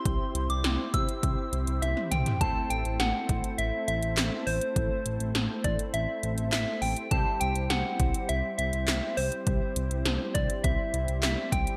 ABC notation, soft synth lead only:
X:1
M:4/4
L:1/16
Q:1/4=102
K:Ador
V:1 name="Soft synth lead"
c'3 d'3 e'6 e2 g2 | a2 g2 f4 e2 e4 c2- | c6 d2 e4 e2 g2 | a2 g2 f4 e2 e4 c2- |
c6 d2 e4 e2 g2 |]